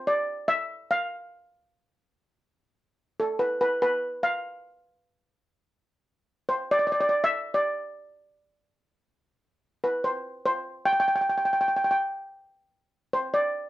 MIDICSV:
0, 0, Header, 1, 2, 480
1, 0, Start_track
1, 0, Tempo, 414365
1, 1281, Time_signature, 4, 2, 24, 8
1, 15863, End_track
2, 0, Start_track
2, 0, Title_t, "Steel pan"
2, 0, Program_c, 0, 114
2, 84, Note_on_c, 0, 74, 92
2, 529, Note_off_c, 0, 74, 0
2, 557, Note_on_c, 0, 76, 102
2, 1051, Note_on_c, 0, 77, 93
2, 1054, Note_off_c, 0, 76, 0
2, 2443, Note_off_c, 0, 77, 0
2, 3703, Note_on_c, 0, 69, 86
2, 3930, Note_on_c, 0, 71, 86
2, 3943, Note_off_c, 0, 69, 0
2, 4167, Note_off_c, 0, 71, 0
2, 4181, Note_on_c, 0, 71, 101
2, 4412, Note_off_c, 0, 71, 0
2, 4425, Note_on_c, 0, 71, 96
2, 4865, Note_off_c, 0, 71, 0
2, 4902, Note_on_c, 0, 77, 98
2, 6292, Note_off_c, 0, 77, 0
2, 7515, Note_on_c, 0, 72, 96
2, 7772, Note_off_c, 0, 72, 0
2, 7777, Note_on_c, 0, 74, 105
2, 7854, Note_off_c, 0, 74, 0
2, 7868, Note_on_c, 0, 74, 70
2, 7945, Note_off_c, 0, 74, 0
2, 7959, Note_on_c, 0, 74, 78
2, 8003, Note_off_c, 0, 74, 0
2, 8017, Note_on_c, 0, 74, 77
2, 8101, Note_off_c, 0, 74, 0
2, 8115, Note_on_c, 0, 74, 90
2, 8197, Note_off_c, 0, 74, 0
2, 8214, Note_on_c, 0, 74, 73
2, 8291, Note_off_c, 0, 74, 0
2, 8385, Note_on_c, 0, 76, 110
2, 8737, Note_on_c, 0, 74, 95
2, 8749, Note_off_c, 0, 76, 0
2, 10608, Note_off_c, 0, 74, 0
2, 11395, Note_on_c, 0, 71, 87
2, 11498, Note_off_c, 0, 71, 0
2, 11632, Note_on_c, 0, 72, 91
2, 12098, Note_off_c, 0, 72, 0
2, 12111, Note_on_c, 0, 72, 95
2, 12547, Note_off_c, 0, 72, 0
2, 12575, Note_on_c, 0, 79, 101
2, 12644, Note_off_c, 0, 79, 0
2, 12658, Note_on_c, 0, 79, 68
2, 12728, Note_off_c, 0, 79, 0
2, 12742, Note_on_c, 0, 79, 88
2, 12822, Note_off_c, 0, 79, 0
2, 12835, Note_on_c, 0, 79, 71
2, 12910, Note_off_c, 0, 79, 0
2, 12924, Note_on_c, 0, 79, 72
2, 12974, Note_off_c, 0, 79, 0
2, 12988, Note_on_c, 0, 79, 65
2, 13071, Note_off_c, 0, 79, 0
2, 13084, Note_on_c, 0, 79, 69
2, 13164, Note_off_c, 0, 79, 0
2, 13178, Note_on_c, 0, 79, 62
2, 13255, Note_off_c, 0, 79, 0
2, 13267, Note_on_c, 0, 79, 71
2, 13345, Note_off_c, 0, 79, 0
2, 13357, Note_on_c, 0, 79, 67
2, 13434, Note_off_c, 0, 79, 0
2, 13447, Note_on_c, 0, 79, 77
2, 13519, Note_off_c, 0, 79, 0
2, 13531, Note_on_c, 0, 79, 65
2, 13607, Note_off_c, 0, 79, 0
2, 13628, Note_on_c, 0, 79, 75
2, 13698, Note_off_c, 0, 79, 0
2, 13720, Note_on_c, 0, 79, 73
2, 13781, Note_off_c, 0, 79, 0
2, 13795, Note_on_c, 0, 79, 83
2, 13869, Note_off_c, 0, 79, 0
2, 15214, Note_on_c, 0, 72, 95
2, 15319, Note_off_c, 0, 72, 0
2, 15449, Note_on_c, 0, 74, 96
2, 15863, Note_off_c, 0, 74, 0
2, 15863, End_track
0, 0, End_of_file